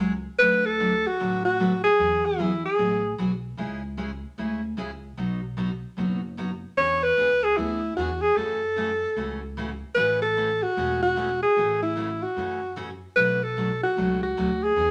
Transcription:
Already playing: C#2
0.00 F#3 G#3 C#4 G#4 C#5
0.39 D2 D3 F#3 A3 D4 F#4 B4
0.66 A4
0.79 D3 F#3 A3 D4 F#4 B4
1.07 F#4
1.19 A1 D3 F#3 A3 D4 F#4 B4
1.45 F#4
1.60 D3 F#3 A3 D4 F#4 B4
1.84 G#4
1.99 E2 E3 F#3 B3 F#4 G#4
2.26 E4
2.38 E3 F#3 B3 F#4 G#4
2.66 G#4
2.78 A1 E3 F#3 B3 F#4 G#4
3.18 B1 E3 F#3 B3 F#4 G#4
3.57 C#2 C#3 G#3 C#4 E4 G#4
3.97 C#3 G#3 C#4 E4 G#4
4.38 D2 C#3 G#3 C#4 E4 G#4
4.77 C#2 C#3 G#3 C#4 E4 G#4
5.17 B1 B2 F#3 B3 D#4 F#4
5.57 B2 F#3 B3 D#4 F#4
5.97 F#1 B2 F#3 B3 D#4 F#4
6.37 B2 F#3 B3 D#4 F#4
6.77 E2 E3 B3 D4 G#4 C#5
7.03 B4
7.17 C#2 E3 B3 D4 G#4
7.44 G#4
7.57 D2 E3 B3 D4 E4 G#4
7.97 E2 E3 B3 D4 F#4 G#4
8.22 G#4
8.36 F#2 C#3 E3 A3 C#4 F#4 A4
8.76 C#3 E3 A3 C#4 F#4
9.16 C#2 C#3 E3 A3 C#4 F#4
9.57 C#3 E3 A3 C#4 F#4
9.95 A1 C#3 E3 A3 C#4 F#4 B4
10.22 A4
10.36 C#3 E3 A3 C#4 F#4
10.62 F#4
10.77 E1 C#3 E3 A3 C#4 F#4
11.03 F#4
11.16 C#3 E3 A3 C#4 F#4
11.43 G#4
11.57 A1 C#3 E3 A3 C#4 F#4
11.83 E4
11.96 C#3 E3 A3 C#4 F#4
12.23 F#4
12.36 F#2 C#3 E3 A3 C#4 F#4
12.76 C#3 E3 A3 C#4 F#4
13.16 B1 B2 F#3 A3 D4 F#4 B4
13.43 A4
13.57 B2 F#3 A3 D4 F#4
13.83 F#4
13.97 C#2 B2 F#3 A3 D4 F#4
14.23 F#4
14.37 D2 B2 F#3 A3 D4 F#4
14.64 G#4
14.76 E2 E3 B3 D4 G#4

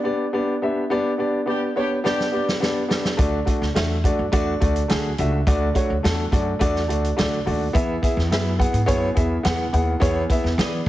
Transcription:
0.04 B3 D4 G4 D5
0.33 B3 D4 G4 D5
0.62 B3 D4 G4 E5
0.90 B3 D4 G4 D5
1.18 B3 D4 G4 D5
1.46 B3 D4 G4 D5
1.76 B3 D4 G4 C#5
2.04 B3 D4 G4 D5, snare
2.20 snare
2.32 B3 D4 G4 D5
2.49 snare
2.60 B3 D4 G4 D5, snare
2.88 B3 D4 G4 D5, snare
3.05 snare
3.17 D2 A3 D4 F#4 D5, kick, closed hi-hat
3.45 A3 D4 F#4 D5, kick, closed hi-hat
3.62 D2, snare
3.75 E2 A3 D4 F#4 E5, snare, closed hi-hat
4.04 A3 D4 F#4 D5, kick, closed hi-hat
4.19 F#2
4.32 E2 A3 D4 F#4 D5, kick, closed hi-hat
4.60 D2 A3 D4 F#4 D5, kick, closed hi-hat
4.76 closed hi-hat
4.88 D2 A3 D4 F#4 G#4, snare, closed hi-hat
5.18 C#2 A3 D4 F#4 E5, closed hi-hat
5.47 D2 A3 D4 F#4 D5, kick, closed hi-hat
5.74 A3 D4 F#4 C#5, kick, closed hi-hat
5.90 D2
6.03 E2 A3 D4 F#4 A4, snare, closed hi-hat
6.31 F#2 A3 D4 F#4 D5, kick, closed hi-hat
6.59 E2 A3 D4 F#4 D5, kick, closed hi-hat
6.76 snare
6.88 D2 A3 D4 F#4 D5, closed hi-hat
7.04 closed hi-hat
7.16 D2 A3 D4 F#4 D5, snare, closed hi-hat
7.46 D#2 A3 D4 F#4 D5, open hi-hat
7.73 E2 B3 E4 G#4 E5, kick, closed hi-hat
8.02 B3 E4 G#4 E5, kick, closed hi-hat
8.17 E2, snare
8.31 F#2 B3 E4 G#4 E5, snare, closed hi-hat
8.59 B3 E4 G#4 F#5, kick, closed hi-hat
8.73 G#2, closed hi-hat
8.86 F#2 B3 E4 G#4 C#5, kick, closed hi-hat
9.15 E2 B3 E4 G#4 E5, kick, closed hi-hat
9.43 E2 B3 E4 G#4 F#5, snare, closed hi-hat
9.73 D#2 B3 E4 G#4 F#5, closed hi-hat
10.00 E2 B3 E4 G#4 C#5, kick, closed hi-hat
10.29 B3 E4 G#4 E5, kick, closed hi-hat
10.44 E2, snare
10.57 E3 B3 E4 G#4 D5, snare, closed hi-hat

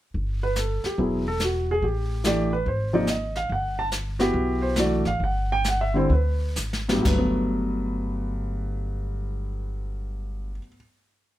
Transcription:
0.14 G1, brush sweep, kick
0.43 B4
0.56 A4, snare, hi-hat pedal
0.84 G4, muted upright bass stroke, snare
0.98 E1 F#3 B3 E4 G#4, brush sweep, kick
1.28 A4
1.40 snare, hi-hat pedal
1.44 F#4
1.71 G#4
1.82 A1 G4, brush sweep, kick
2.24 E3 A3 D4 G4 D5, snare, hi-hat pedal
2.53 B4
2.66 G#1 C5, brush sweep, kick
2.93 C3 F3 A#3 D#4 D5
3.07 D#5, snare, hi-hat pedal
3.36 F5, snare
3.49 G1 F#5, brush sweep, kick
3.79 A5
3.92 snare, hi-hat pedal
4.19 B3 E4 F#4 G4, snare
4.34 B1, brush sweep, kick
4.62 C5
4.76 E3 A3 D4 F#4 D5, snare, hi-hat pedal
5.05 G#1 F5, snare
5.20 G1, brush sweep, kick
5.24 F#5
5.52 G5
5.64 snare, hi-hat pedal
5.68 F#5
5.81 E5
5.94 D3 G3 C4 E4 C5
6.10 D2 B4, brush sweep, kick
6.56 G#1, snare, hi-hat pedal
6.73 snare
6.88 A2 F#3 B3 E4 G4, snare
6.93 G2
7.01 G1 F#3, kick, snare, splash
7.06 A3 B4
7.18 B3

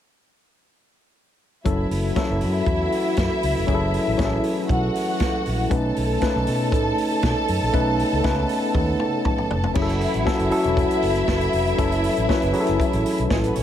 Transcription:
1.65 F#1 E3 F#3 A3 C#4 E4 F#4 A4 E5, kick, closed hi-hat
1.91 F#1, open hi-hat
2.16 F#3 C#4 E4 A4, kick, snare, closed hi-hat
2.30 F#1
2.41 F#2, open hi-hat
2.66 E2, kick, closed hi-hat
2.92 open hi-hat
3.17 F#2, kick, snare, closed hi-hat
3.43 C#2, open hi-hat
3.57 F1
3.67 F#1 F#3 C#4 E4 G#4, kick, closed hi-hat
3.74 A4
3.94 open hi-hat
4.07 A1
4.17 A1 F#3 C#4 E4 G#4, kick, snare, closed hi-hat
4.25 A4
4.44 open hi-hat
4.69 B1 F#4 F#5, kick, closed hi-hat
4.95 open hi-hat
5.20 kick, snare, closed hi-hat
5.46 A#1, open hi-hat
5.70 B1 C#3 A3 C#4 D#4 A4 B4 A5, kick, closed hi-hat
5.96 B1, open hi-hat
6.21 A3 C#4 D#4 B4, kick, snare, closed hi-hat
6.36 B1
6.47 B2, open hi-hat
6.72 A2, kick, closed hi-hat
6.98 open hi-hat
7.22 B2, kick, snare, closed hi-hat
7.48 F#2, open hi-hat
7.62 A#1
7.73 B1 A3 B3 C#4 D#4 B4, kick, closed hi-hat
7.99 open hi-hat
8.13 C#2
8.24 C#2 A3 C#4 D#4 B4, kick, snare, closed hi-hat
8.49 open hi-hat
8.74 D#2, kick, high tom
9.00 mid tom
9.25 kick, mid tom
9.38 mid tom
9.51 F1, floor tom
9.64 floor tom
9.74 F#1 E3 F#3 A3 C#4 E4 F#4 G#4 E5, kick, crash
9.82 A4
9.89 closed hi-hat
10.01 open hi-hat
10.14 A1, closed hi-hat
10.25 F#3 C#4 E4 A4, kick, snare
10.39 F#1, closed hi-hat
10.51 F#3 C#4 E4 A4, open hi-hat
10.64 E1, closed hi-hat
10.77 kick, closed hi-hat
10.91 closed hi-hat
11.02 F#1, open hi-hat
11.16 closed hi-hat
11.28 F#1, kick, snare
11.41 closed hi-hat
11.53 F1, open hi-hat
11.67 closed hi-hat
11.78 F#1 F#3 C#4 E4 A4, kick, closed hi-hat
11.92 closed hi-hat
12.04 open hi-hat
12.17 A1, closed hi-hat
12.28 F#3 C#4 E4 B4, kick, snare
12.42 F#1, closed hi-hat
12.53 F#3 C#4 E4 G#4, open hi-hat
12.60 A4
12.67 F#1, closed hi-hat
12.80 kick, closed hi-hat
12.93 A1, closed hi-hat
13.06 open hi-hat
13.18 B1, closed hi-hat
13.30 A1 G#3 G#4, kick, snare
13.39 A3 A4
13.44 B3 B4, closed hi-hat
13.55 A#1 C#4 C#5, open hi-hat

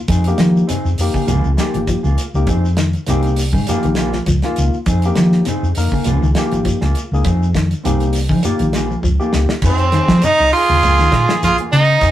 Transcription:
0.08 F2 C4 D#4 G#4, kick, closed hi-hat, shekere
0.24 A#3 D#4 G4, closed hi-hat, shekere
0.38 D#3 F3, snare, closed hi-hat, shekere
0.56 shekere
0.67 C3 C4 D#4 G#4, closed hi-hat, shekere
0.85 F2, shekere
0.98 F2 A#3 D#4 G4, open hi-hat, shekere
1.13 C#3 D#4 G#4, muted fingered electric bass stroke, kick, shekere
1.27 C#2 F3 A#3 F4 G#4, closed hi-hat, shekere
1.44 C#2, shekere
1.57 F3 A#3 D#4 F4 G4 G#4, snare, closed hi-hat, shekere
1.74 G#1 F3, closed hi-hat, shekere
1.87 F3, kick, closed hi-hat, shekere
2.03 C#2 A#3 F4 G#4, shekere
2.18 closed hi-hat, shekere
2.34 C#2 A#3 D#4 G4, shekere
2.47 F2 C4 D#4 G#4, kick, closed hi-hat, shekere
2.65 shekere
2.77 D#3, snare, closed hi-hat, shekere
2.93 closed hi-hat, shekere
3.07 C2 C3 A#3 C4 D#4 G4 G#4, snare, closed hi-hat, shekere
3.23 closed hi-hat, shekere
3.36 open hi-hat, shekere
3.52 G#2 C#3 D#4 G#4, kick, shekere
3.67 F3 A#3 D#4 F4 G4 G#4, muted fingered electric bass stroke, closed hi-hat, shekere
3.83 A#1 D#3, closed hi-hat, shekere
3.95 F3 A#3 F4 G#4, snare, closed hi-hat, shekere
4.13 F3, snare, shekere
4.26 C#2 F3, kick, closed hi-hat, shekere
4.42 A#3 D#4 F4 G#4, snare, closed hi-hat, shekere
4.56 C#2, closed hi-hat, shekere
4.74 shekere
4.86 F2 C4 D#4 G#4, kick, closed hi-hat, shekere
5.02 A#3 D#4 G4, closed hi-hat, shekere
5.15 D#3 F3, snare, closed hi-hat, shekere
5.32 snare, shekere
5.45 C3 C4 D#4 G#4, snare, closed hi-hat, shekere
5.63 F2, shekere
5.75 F2 A#3 D#4 A#4, open hi-hat, shekere
5.92 C#3 D#4 G#4, kick, shekere
6.04 C#2 F3 A#3 F4 G#4, closed hi-hat, shekere
6.22 C#2 D#3, shekere
6.35 F3 A#3 D#4 F4 G4 G#4, snare, closed hi-hat, shekere
6.52 G#1 F3, closed hi-hat, shekere
6.65 F3, kick, closed hi-hat, shekere
6.81 C#2 A#3 F4 G#4, snare, shekere
6.95 closed hi-hat, shekere
7.12 C#2 A#3 D#4 G#4, shekere
7.25 F2 C4 D#4 G#4, kick, closed hi-hat, shekere
7.43 shekere
7.55 D#3, kick, snare, closed hi-hat, shekere
7.71 closed hi-hat, shekere
7.84 C2 C3 A#3 C4 D#4 G4 G#4, closed hi-hat, shekere
8.00 closed hi-hat, shekere
8.13 open hi-hat, shekere
8.29 C#3 F3 D#4 G#4, kick, shekere
8.43 A#3 D#4 F4 G4, muted clean electric guitar stroke, muted fingered electric bass stroke, closed hi-hat, shekere
8.59 A#1 D#3, closed hi-hat, shekere
8.73 F3 A#3 F4 G#4, snare, closed hi-hat, shekere
8.91 F3, shekere
9.03 C#2 F3, kick, shekere
9.20 A#3 D#4 F4 G4 G#4, shekere
9.33 C#2, snare, shekere
9.49 snare, shekere
9.62 F2 C4 D#4 G#4, kick, crash, shekere
9.66 C4
9.78 closed hi-hat
9.92 D#3 C4 D#4 G#4, snare, closed hi-hat, shekere
10.08 F3, kick, snare
10.22 C3 D#4, closed hi-hat, shekere
10.27 D#4
10.39 C2 D#4, muted clean electric guitar stroke
10.53 F4, open hi-hat, shekere
10.57 G#4
10.69 D#2 C#3
10.83 C#2 F3 A#3 F4 G#4, closed hi-hat, shekere
10.99 D#3, snare
11.12 A#2, kick, snare, closed hi-hat, shekere
11.29 F3 A#3 F4 G#4, snare
11.43 A#1 F3 F4 G#4, snare, closed hi-hat, shekere
11.58 A#3 F4 G#4, closed hi-hat
11.72 C#3 D#4, closed hi-hat, shekere
12.01 F2 C4 D#4 G#4, kick, closed hi-hat, shekere

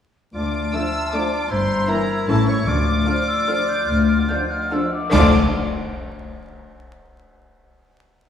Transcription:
0.34 D2 F4 D5 A5 D6
0.72 F3 A3 D4 A4 E5 E6
1.12 F3 A3 D4 A4 D5 D6
1.50 G1 G2 E4 C5 A#5 C6
1.87 E3 A#3 E4 A#4 A#5
2.28 A1 A2 E3 C#4 E4 A4 A5 C#6
2.49 C#5 C#6
2.67 D2 D3 F4 D5 D6
3.06 D3 F3 D4 F4 A4 F6
3.28 E6
3.48 D3 F3 D4 F4 A4 F6
3.68 G6
3.88 D2 F6
4.07 F6
4.28 D3 F3 D4 F4 A4 G6
4.50 F6
4.71 D3 F3 D4 F4 A4 E6
4.94 D6
5.12 D2 D3 F3 D4 F4 A4 D5 D6, concert bass drum, crash

